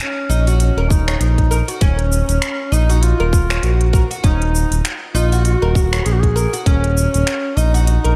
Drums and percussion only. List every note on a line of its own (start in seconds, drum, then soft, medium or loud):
0.00 shaker soft
0.31 shaker medium
0.47 closed hi-hat soft
0.47 shaker soft
0.60 closed hi-hat medium
0.60 shaker soft
0.90 kick loud
0.90 shaker medium
1.08 finger snap medium
1.08 closed hi-hat soft
1.08 shaker soft
1.21 closed hi-hat medium
1.21 shaker soft
1.38 kick medium
1.38 closed hi-hat soft
1.52 shaker medium
1.68 closed hi-hat soft
1.68 shaker soft
1.81 kick loud
1.81 closed hi-hat medium
1.81 shaker soft
1.99 closed hi-hat soft
2.12 shaker medium
2.29 closed hi-hat soft
2.29 shaker soft
2.42 finger snap medium
2.42 closed hi-hat medium
2.42 shaker soft
2.73 shaker medium
2.90 closed hi-hat soft
2.90 shaker soft
3.03 closed hi-hat medium
3.03 shaker soft
3.33 kick loud
3.33 shaker medium
3.50 finger snap medium
3.50 closed hi-hat soft
3.50 shaker soft
3.63 closed hi-hat medium
3.63 shaker soft
3.81 closed hi-hat soft
3.93 kick loud
3.93 shaker medium
4.11 closed hi-hat soft
4.11 shaker soft
4.24 kick loud
4.24 closed hi-hat medium
4.24 shaker soft
4.42 closed hi-hat soft
4.55 shaker medium
4.72 closed hi-hat soft
4.72 shaker soft
4.85 finger snap medium
4.85 closed hi-hat medium
4.85 shaker soft
5.16 shaker medium
5.32 closed hi-hat soft
5.32 shaker soft
5.45 closed hi-hat medium
5.45 shaker soft
5.75 kick loud
5.75 shaker medium
5.93 finger snap medium
5.93 closed hi-hat soft
5.93 shaker soft
6.06 closed hi-hat medium
6.06 shaker soft
6.23 kick medium
6.23 closed hi-hat soft
6.37 shaker medium
6.54 closed hi-hat soft
6.54 shaker soft
6.66 kick loud
6.66 closed hi-hat medium
6.66 shaker soft
6.84 closed hi-hat soft
6.98 shaker medium
7.14 closed hi-hat soft
7.14 shaker soft
7.27 finger snap medium
7.27 closed hi-hat medium
7.27 shaker soft
7.58 shaker medium
7.75 closed hi-hat soft
7.75 shaker soft
7.87 closed hi-hat medium
7.87 shaker soft
8.05 closed hi-hat soft